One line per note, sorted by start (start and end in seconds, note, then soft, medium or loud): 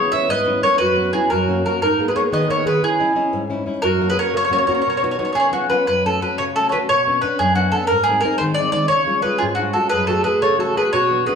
0.00 0.12 C#3 medium
0.00 0.12 B3 medium
0.00 0.12 C#4 soft
0.00 0.13 E4 medium
0.00 0.11 G#4 medium
0.12 0.40 B3 medium
0.12 0.40 C#4 soft
0.12 0.40 E4 soft
0.12 0.29 C#5 medium
0.12 0.29 E5 medium
0.29 0.62 G#2 medium
0.29 0.61 B4 medium
0.29 0.61 D#5 loud
0.46 0.62 B3 soft
0.46 0.62 C#4 soft
0.46 0.62 E4 medium
0.63 0.76 B3 soft
0.63 0.77 C#4 soft
0.63 0.77 E4 soft
0.63 0.79 A#4 medium
0.63 0.78 C#5 medium
0.78 1.13 F#2 medium
0.78 1.12 F#4 medium
0.78 1.10 B4 loud
0.96 1.12 B3 soft
0.96 1.13 C#4 soft
0.96 1.13 F#4 soft
1.13 1.27 B3 soft
1.13 1.28 C#4 soft
1.13 1.30 E4 medium
1.13 1.28 F#4 medium
1.13 1.29 G#4 medium
1.30 1.65 F#2 medium
1.30 1.63 F#4 medium
1.30 1.62 A#4 medium
1.48 1.64 A#3 soft
1.48 1.65 C#4 soft
1.48 1.65 F#4 soft
1.65 1.79 A#3 soft
1.65 1.79 C#4 soft
1.65 1.80 F#4 soft
1.65 1.82 F#4 medium
1.65 1.81 A#4 medium
1.82 2.15 G#2 soft
1.82 2.06 D#4 medium
1.82 2.06 A#4 medium
1.99 2.14 A#3 soft
1.99 2.14 B3 soft
1.99 2.14 G#4 soft
2.08 2.12 G#4 medium
2.08 2.12 B4 medium
2.15 2.42 A#3 soft
2.15 2.43 B3 soft
2.15 2.43 G#4 soft
2.15 2.25 A#4 medium
2.15 2.21 C#5 medium
2.32 2.65 D#3 medium
2.32 2.48 B4 medium
2.32 2.49 D#5 medium
2.49 2.64 A#3 soft
2.49 2.64 B3 soft
2.49 2.64 G#4 soft
2.49 2.65 A#4 medium
2.49 2.66 C#5 medium
2.65 2.79 A#3 soft
2.65 2.79 B3 soft
2.65 2.79 G#4 soft
2.65 2.82 G#4 medium
2.65 2.82 B4 medium
2.83 3.15 C#3 medium
2.83 3.46 E4 medium
2.83 3.47 G#4 medium
3.00 3.15 C#4 soft
3.00 3.15 E4 medium
3.00 3.15 D#5 soft
3.16 3.43 C#4 soft
3.16 3.43 E4 medium
3.16 3.43 D#5 soft
3.33 3.66 G#2 medium
3.50 3.65 C#4 soft
3.50 3.65 D#4 soft
3.50 3.66 E4 medium
3.66 3.80 C#4 soft
3.66 3.80 D#4 soft
3.66 3.80 E4 soft
3.82 4.16 F#2 medium
3.82 4.07 F#4 medium
3.82 4.09 A#4 loud
4.00 4.15 A#3 soft
4.00 4.15 C#4 soft
4.00 4.16 F#4 medium
4.10 4.17 G#4 medium
4.10 4.17 B4 medium
4.16 4.44 A#3 soft
4.16 4.44 C#4 soft
4.16 4.44 F#4 medium
4.16 4.34 A#4 medium
4.16 4.34 C#5 medium
4.34 4.67 C#3 medium
4.34 5.50 A#4 medium
4.34 4.42 C#5 medium
4.44 4.50 C#5 medium
4.50 4.67 A#3 medium
4.50 4.67 C#4 soft
4.50 4.67 F#4 medium
4.50 4.57 C#5 medium
4.58 4.64 C#5 medium
4.67 4.82 A#3 medium
4.67 4.82 C#4 soft
4.67 4.82 F#4 medium
4.67 4.72 C#5 medium
4.74 4.80 C#5 soft
4.82 4.87 C#5 medium
4.86 5.19 B2 soft
4.86 4.95 C#5 medium
4.97 5.02 C#5 medium
5.03 5.18 B3 soft
5.03 5.18 D#4 soft
5.03 5.19 F#4 soft
5.03 5.09 C#5 soft
5.11 5.17 C#5 medium
5.19 5.33 B3 soft
5.19 5.33 D#4 soft
5.19 5.33 F#4 medium
5.19 5.24 C#5 soft
5.25 5.31 C#5 medium
5.33 5.69 C#3 medium
5.33 5.52 G#4 medium
5.33 5.38 C#5 medium
5.40 5.46 C#5 medium
5.52 5.69 B3 soft
5.52 5.69 C#4 soft
5.52 5.70 F4 soft
5.52 5.71 F#4 medium
5.70 5.84 B3 soft
5.70 5.84 C#4 soft
5.70 5.85 F4 soft
5.70 5.86 B4 medium
5.87 6.21 F#2 soft
5.87 6.04 B4 medium
6.06 6.20 A3 soft
6.06 6.21 C#4 soft
6.06 6.22 F#4 soft
6.06 6.21 A4 medium
6.22 6.49 A3 soft
6.22 6.50 C#4 soft
6.22 6.50 F#4 soft
6.22 6.38 B4 medium
6.38 6.72 C#3 medium
6.38 6.43 C#5 medium
6.55 6.72 A3 soft
6.55 6.72 C#4 soft
6.55 6.72 F#4 soft
6.55 6.68 A4 medium
6.69 6.86 A3 soft
6.69 6.86 C#4 soft
6.69 6.77 B4 medium
6.69 6.73 C#5 medium
6.74 6.87 F#4 soft
6.89 7.22 B2 soft
6.89 7.21 C#5 medium
7.07 7.22 B3 soft
7.07 7.22 C#4 soft
7.07 7.22 D4 soft
7.21 7.50 B3 soft
7.21 7.50 C#4 soft
7.21 7.50 D4 medium
7.21 7.38 B4 medium
7.39 7.72 F#2 medium
7.39 7.55 G#4 medium
7.55 7.73 B3 soft
7.55 7.72 C#4 soft
7.55 7.73 D4 soft
7.55 7.72 F#4 medium
7.72 7.87 B3 soft
7.72 7.87 C#4 soft
7.72 7.87 D4 soft
7.72 7.87 A4 medium
7.87 8.23 G#2 medium
7.87 8.06 A#4 loud
8.04 8.21 G#4 medium
8.09 8.24 G#3 soft
8.09 8.23 C4 soft
8.09 8.24 D#4 soft
8.21 8.37 A#4 medium
8.25 8.51 G#3 soft
8.25 8.51 C4 soft
8.25 8.51 D#4 medium
8.38 8.73 D#3 medium
8.38 8.43 C5 medium
8.54 8.71 D5 medium
8.59 8.72 G#3 soft
8.59 8.72 C4 soft
8.59 8.73 D#4 medium
8.72 8.87 G#3 soft
8.72 8.87 C4 soft
8.72 8.87 D#4 soft
8.72 8.88 D5 medium
8.88 9.23 C#3 medium
8.88 9.22 C#5 loud
9.06 9.23 G#3 soft
9.06 9.24 C#4 soft
9.06 9.23 F4 soft
9.22 9.52 G#3 soft
9.22 9.52 C#4 soft
9.22 9.52 F4 soft
9.22 9.38 G#4 medium
9.22 9.39 B4 medium
9.38 9.75 G#2 medium
9.38 9.47 F4 medium
9.38 9.43 G#4 medium
9.55 9.74 G#3 soft
9.55 9.74 C#4 soft
9.55 9.73 D4 medium
9.55 9.72 F#4 medium
9.59 9.74 F4 soft
9.73 9.89 G#3 soft
9.73 9.89 C#4 soft
9.73 9.89 F4 soft
9.73 9.89 F#4 medium
9.73 9.89 A4 medium
9.89 10.26 F#2 soft
9.89 10.07 G#4 medium
9.89 10.07 B4 medium
10.07 10.25 A3 soft
10.07 10.23 F#4 medium
10.07 10.25 F#4 soft
10.07 10.26 G#4 soft
10.07 10.24 A4 medium
10.24 10.53 A3 soft
10.24 10.53 F#4 soft
10.24 10.41 G#4 medium
10.24 10.54 G#4 soft
10.24 10.41 B4 medium
10.41 10.76 C#3 medium
10.41 10.58 A4 medium
10.41 10.59 C#5 medium
10.58 10.75 A3 soft
10.58 10.75 F#4 medium
10.58 10.75 F#4 soft
10.58 10.76 G#4 soft
10.58 10.76 A4 medium
10.76 10.90 A3 soft
10.76 10.90 F#4 soft
10.76 10.92 G#4 medium
10.76 10.91 G#4 medium
10.76 10.92 B4 medium
10.93 11.26 B2 medium
10.93 11.25 F#4 medium
10.93 11.26 C#5 medium
11.10 11.27 B3 soft
11.10 11.27 D4 soft
11.10 11.28 F#4 soft
11.26 11.35 B3 soft
11.26 11.35 D4 soft
11.26 11.35 F#4 soft
11.26 11.35 G#4 medium
11.26 11.35 B4 medium